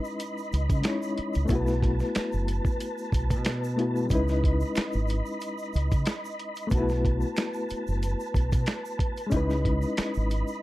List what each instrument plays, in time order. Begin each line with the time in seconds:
Already playing: reed electric piano G#3 C#4 D#4 E4 B4, tonewheel organ D#5 B5
0.04 shaker
0.20 closed hi-hat, shaker
0.38 shaker
0.53 fingered electric bass C#2, closed hi-hat, shaker
0.70 fingered electric bass C#3, kick, closed hi-hat, shaker
0.81 reed electric piano G#3 C#4 D#4 E4, finger snap, snare, closed hi-hat, shaker
0.86 reed electric piano C#5
1.02 shaker
1.18 muted fingered electric bass stroke, closed hi-hat
1.34 fingered electric bass C#2, closed hi-hat, shaker
1.45 reed electric piano A3 B3, tonewheel organ B4 A5, shaker
1.49 fingered electric bass B1, reed electric piano E4 F#4, kick, closed hi-hat
1.55 reed electric piano B4
1.67 snare, shaker
1.82 kick, snare, closed hi-hat
2.00 snare, shaker
2.15 finger snap, muted fingered electric bass stroke, snare, closed hi-hat, shaker
2.32 fingered electric bass F#1, shaker
2.48 closed hi-hat, shaker
2.65 kick, shaker
2.80 closed hi-hat, shaker
2.98 shaker
3.12 fingered electric bass B1, kick, closed hi-hat, shaker
3.30 fingered electric bass B2, kick, closed hi-hat, shaker
3.45 finger snap, snare, closed hi-hat, shaker
3.64 shaker
3.76 reed electric piano A3 B3 E4 F#4, closed hi-hat
3.81 reed electric piano B4
3.96 shaker
4.05 reed electric piano G#3 C#4
4.10 fingered electric bass C#2, reed electric piano D#4 E4, tonewheel organ D#5 B5, kick, closed hi-hat, shaker
4.15 reed electric piano B4
4.28 snare, shaker
4.44 kick, closed hi-hat
4.60 shaker
4.76 finger snap, muted fingered electric bass stroke, closed hi-hat, shaker
4.77 finger snap, snare
4.93 fingered electric bass G#1, shaker
5.08 closed hi-hat, shaker
5.26 shaker
5.41 closed hi-hat, shaker
5.58 shaker
5.73 fingered electric bass C#2, closed hi-hat, shaker
5.91 fingered electric bass C#3, kick, closed hi-hat, shaker
6.06 finger snap, snare, closed hi-hat, shaker
6.25 shaker
6.39 closed hi-hat
6.56 closed hi-hat, shaker
6.67 reed electric piano A3 B3, tonewheel organ B4, shaker
6.71 fingered electric bass B1, reed electric piano D#4 F#4, tonewheel organ A5, kick, closed hi-hat
6.77 reed electric piano E4 B4
6.89 snare, shaker
7.05 kick, closed hi-hat
7.21 shaker
7.37 finger snap, snare, closed hi-hat, shaker
7.54 shaker
7.69 muted fingered electric bass stroke, closed hi-hat, shaker
7.87 fingered electric bass F#1, shaker
8.03 closed hi-hat, shaker
8.20 shaker
8.34 fingered electric bass B1, kick, closed hi-hat, shaker
8.52 fingered electric bass B2, kick, closed hi-hat, shaker
8.66 finger snap, snare, closed hi-hat, shaker
8.85 shaker
8.99 kick, closed hi-hat
9.17 closed hi-hat, shaker
9.27 reed electric piano G#3 C#4
9.31 fingered electric bass C#2, reed electric piano D#4 E4, tonewheel organ D#5 B5, kick, closed hi-hat, shaker
9.37 reed electric piano B4
9.50 snare, shaker
9.65 kick, closed hi-hat
9.82 shaker
9.97 finger snap, muted fingered electric bass stroke, snare, closed hi-hat, shaker
10.14 fingered electric bass G#1, shaker
10.31 closed hi-hat, shaker
10.48 shaker